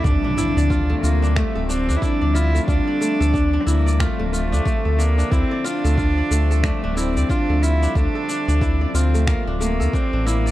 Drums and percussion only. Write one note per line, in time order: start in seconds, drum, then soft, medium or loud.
0.04 kick loud
0.04 shaker soft
0.38 shaker medium
0.58 shaker soft
0.70 kick loud
0.70 shaker soft
1.04 shaker medium
1.24 shaker soft
1.36 finger snap medium
1.36 kick loud
1.36 shaker soft
1.70 shaker medium
1.90 shaker soft
2.02 kick loud
2.02 shaker soft
2.36 shaker medium
2.56 shaker soft
2.68 kick loud
2.68 shaker soft
3.02 shaker medium
3.22 shaker soft
3.34 kick loud
3.34 shaker soft
3.68 shaker medium
3.88 shaker soft
4.00 finger snap medium
4.00 kick loud
4.00 shaker soft
4.34 shaker medium
4.54 shaker soft
4.66 kick loud
4.66 shaker soft
5.00 shaker medium
5.19 shaker soft
5.32 kick loud
5.32 shaker soft
5.66 shaker medium
5.85 shaker soft
5.98 kick loud
5.98 shaker soft
6.32 shaker medium
6.51 shaker soft
6.64 finger snap medium
6.64 kick loud
6.64 shaker soft
6.98 shaker medium
7.17 shaker soft
7.29 kick loud
7.29 shaker soft
7.63 shaker medium
7.83 shaker soft
7.95 kick loud
7.95 shaker soft
8.29 shaker medium
8.49 shaker soft
8.61 kick loud
8.61 shaker soft
8.95 shaker medium
9.15 shaker soft
9.27 finger snap medium
9.27 kick loud
9.27 shaker soft
9.62 shaker medium
9.81 shaker soft
9.93 kick loud
9.93 shaker soft
10.28 shaker medium
10.47 shaker soft